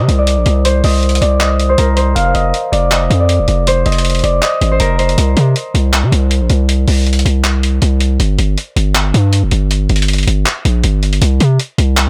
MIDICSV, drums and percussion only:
0, 0, Header, 1, 2, 480
1, 0, Start_track
1, 0, Tempo, 377358
1, 827, Time_signature, 4, 2, 24, 8
1, 15385, End_track
2, 0, Start_track
2, 0, Title_t, "Drums"
2, 111, Note_on_c, 9, 42, 73
2, 238, Note_off_c, 9, 42, 0
2, 344, Note_on_c, 9, 42, 88
2, 471, Note_off_c, 9, 42, 0
2, 582, Note_on_c, 9, 42, 70
2, 710, Note_off_c, 9, 42, 0
2, 827, Note_on_c, 9, 42, 93
2, 954, Note_off_c, 9, 42, 0
2, 1066, Note_on_c, 9, 46, 70
2, 1193, Note_off_c, 9, 46, 0
2, 1308, Note_on_c, 9, 42, 43
2, 1387, Note_off_c, 9, 42, 0
2, 1387, Note_on_c, 9, 42, 55
2, 1465, Note_off_c, 9, 42, 0
2, 1465, Note_on_c, 9, 42, 75
2, 1549, Note_off_c, 9, 42, 0
2, 1549, Note_on_c, 9, 42, 83
2, 1676, Note_off_c, 9, 42, 0
2, 1782, Note_on_c, 9, 42, 94
2, 1787, Note_on_c, 9, 39, 111
2, 1909, Note_off_c, 9, 42, 0
2, 1914, Note_off_c, 9, 39, 0
2, 2029, Note_on_c, 9, 42, 74
2, 2157, Note_off_c, 9, 42, 0
2, 2265, Note_on_c, 9, 42, 89
2, 2392, Note_off_c, 9, 42, 0
2, 2503, Note_on_c, 9, 42, 70
2, 2630, Note_off_c, 9, 42, 0
2, 2748, Note_on_c, 9, 42, 94
2, 2876, Note_off_c, 9, 42, 0
2, 2986, Note_on_c, 9, 42, 72
2, 3113, Note_off_c, 9, 42, 0
2, 3230, Note_on_c, 9, 42, 70
2, 3357, Note_off_c, 9, 42, 0
2, 3471, Note_on_c, 9, 42, 80
2, 3598, Note_off_c, 9, 42, 0
2, 3702, Note_on_c, 9, 42, 94
2, 3707, Note_on_c, 9, 39, 115
2, 3829, Note_off_c, 9, 42, 0
2, 3835, Note_off_c, 9, 39, 0
2, 3951, Note_on_c, 9, 42, 77
2, 4079, Note_off_c, 9, 42, 0
2, 4185, Note_on_c, 9, 42, 93
2, 4312, Note_off_c, 9, 42, 0
2, 4424, Note_on_c, 9, 42, 69
2, 4551, Note_off_c, 9, 42, 0
2, 4669, Note_on_c, 9, 42, 95
2, 4796, Note_off_c, 9, 42, 0
2, 4907, Note_on_c, 9, 46, 69
2, 4908, Note_on_c, 9, 42, 41
2, 4988, Note_off_c, 9, 42, 0
2, 4988, Note_on_c, 9, 42, 55
2, 5034, Note_off_c, 9, 46, 0
2, 5068, Note_off_c, 9, 42, 0
2, 5068, Note_on_c, 9, 42, 68
2, 5148, Note_off_c, 9, 42, 0
2, 5148, Note_on_c, 9, 42, 71
2, 5211, Note_off_c, 9, 42, 0
2, 5211, Note_on_c, 9, 42, 62
2, 5275, Note_off_c, 9, 42, 0
2, 5275, Note_on_c, 9, 42, 52
2, 5331, Note_off_c, 9, 42, 0
2, 5331, Note_on_c, 9, 42, 42
2, 5390, Note_off_c, 9, 42, 0
2, 5390, Note_on_c, 9, 42, 82
2, 5518, Note_off_c, 9, 42, 0
2, 5622, Note_on_c, 9, 42, 91
2, 5627, Note_on_c, 9, 39, 114
2, 5749, Note_off_c, 9, 42, 0
2, 5754, Note_off_c, 9, 39, 0
2, 5870, Note_on_c, 9, 42, 76
2, 5998, Note_off_c, 9, 42, 0
2, 6103, Note_on_c, 9, 42, 93
2, 6230, Note_off_c, 9, 42, 0
2, 6347, Note_on_c, 9, 42, 59
2, 6475, Note_off_c, 9, 42, 0
2, 6475, Note_on_c, 9, 42, 59
2, 6588, Note_off_c, 9, 42, 0
2, 6588, Note_on_c, 9, 42, 98
2, 6715, Note_off_c, 9, 42, 0
2, 6827, Note_on_c, 9, 42, 68
2, 6954, Note_off_c, 9, 42, 0
2, 7070, Note_on_c, 9, 42, 70
2, 7197, Note_off_c, 9, 42, 0
2, 7311, Note_on_c, 9, 42, 76
2, 7438, Note_off_c, 9, 42, 0
2, 7542, Note_on_c, 9, 42, 92
2, 7547, Note_on_c, 9, 39, 117
2, 7669, Note_off_c, 9, 42, 0
2, 7675, Note_off_c, 9, 39, 0
2, 7790, Note_on_c, 9, 42, 78
2, 7917, Note_off_c, 9, 42, 0
2, 8024, Note_on_c, 9, 42, 90
2, 8151, Note_off_c, 9, 42, 0
2, 8263, Note_on_c, 9, 42, 70
2, 8390, Note_off_c, 9, 42, 0
2, 8508, Note_on_c, 9, 42, 94
2, 8635, Note_off_c, 9, 42, 0
2, 8746, Note_on_c, 9, 46, 71
2, 8873, Note_off_c, 9, 46, 0
2, 8987, Note_on_c, 9, 42, 44
2, 9067, Note_off_c, 9, 42, 0
2, 9067, Note_on_c, 9, 42, 57
2, 9146, Note_off_c, 9, 42, 0
2, 9146, Note_on_c, 9, 42, 73
2, 9230, Note_off_c, 9, 42, 0
2, 9230, Note_on_c, 9, 42, 85
2, 9358, Note_off_c, 9, 42, 0
2, 9462, Note_on_c, 9, 42, 91
2, 9467, Note_on_c, 9, 39, 109
2, 9589, Note_off_c, 9, 42, 0
2, 9594, Note_off_c, 9, 39, 0
2, 9710, Note_on_c, 9, 42, 78
2, 9837, Note_off_c, 9, 42, 0
2, 9944, Note_on_c, 9, 42, 89
2, 10072, Note_off_c, 9, 42, 0
2, 10182, Note_on_c, 9, 42, 70
2, 10309, Note_off_c, 9, 42, 0
2, 10427, Note_on_c, 9, 42, 96
2, 10554, Note_off_c, 9, 42, 0
2, 10666, Note_on_c, 9, 42, 73
2, 10794, Note_off_c, 9, 42, 0
2, 10908, Note_on_c, 9, 42, 69
2, 11036, Note_off_c, 9, 42, 0
2, 11150, Note_on_c, 9, 42, 78
2, 11277, Note_off_c, 9, 42, 0
2, 11381, Note_on_c, 9, 42, 93
2, 11387, Note_on_c, 9, 39, 114
2, 11508, Note_off_c, 9, 42, 0
2, 11514, Note_off_c, 9, 39, 0
2, 11630, Note_on_c, 9, 42, 75
2, 11757, Note_off_c, 9, 42, 0
2, 11863, Note_on_c, 9, 42, 94
2, 11990, Note_off_c, 9, 42, 0
2, 12102, Note_on_c, 9, 42, 71
2, 12229, Note_off_c, 9, 42, 0
2, 12348, Note_on_c, 9, 42, 96
2, 12475, Note_off_c, 9, 42, 0
2, 12586, Note_on_c, 9, 46, 70
2, 12587, Note_on_c, 9, 42, 41
2, 12667, Note_off_c, 9, 42, 0
2, 12667, Note_on_c, 9, 42, 56
2, 12713, Note_off_c, 9, 46, 0
2, 12747, Note_off_c, 9, 42, 0
2, 12747, Note_on_c, 9, 42, 70
2, 12827, Note_off_c, 9, 42, 0
2, 12827, Note_on_c, 9, 42, 72
2, 12891, Note_off_c, 9, 42, 0
2, 12891, Note_on_c, 9, 42, 60
2, 12954, Note_off_c, 9, 42, 0
2, 12954, Note_on_c, 9, 42, 51
2, 13011, Note_off_c, 9, 42, 0
2, 13011, Note_on_c, 9, 42, 43
2, 13070, Note_off_c, 9, 42, 0
2, 13070, Note_on_c, 9, 42, 83
2, 13197, Note_off_c, 9, 42, 0
2, 13301, Note_on_c, 9, 42, 93
2, 13307, Note_on_c, 9, 39, 114
2, 13429, Note_off_c, 9, 42, 0
2, 13434, Note_off_c, 9, 39, 0
2, 13549, Note_on_c, 9, 42, 74
2, 13677, Note_off_c, 9, 42, 0
2, 13783, Note_on_c, 9, 42, 92
2, 13910, Note_off_c, 9, 42, 0
2, 14027, Note_on_c, 9, 42, 60
2, 14154, Note_off_c, 9, 42, 0
2, 14154, Note_on_c, 9, 42, 61
2, 14267, Note_off_c, 9, 42, 0
2, 14267, Note_on_c, 9, 42, 92
2, 14394, Note_off_c, 9, 42, 0
2, 14506, Note_on_c, 9, 42, 71
2, 14633, Note_off_c, 9, 42, 0
2, 14749, Note_on_c, 9, 42, 68
2, 14876, Note_off_c, 9, 42, 0
2, 14990, Note_on_c, 9, 42, 79
2, 15117, Note_off_c, 9, 42, 0
2, 15221, Note_on_c, 9, 42, 92
2, 15227, Note_on_c, 9, 39, 114
2, 15348, Note_off_c, 9, 42, 0
2, 15354, Note_off_c, 9, 39, 0
2, 15385, End_track
0, 0, End_of_file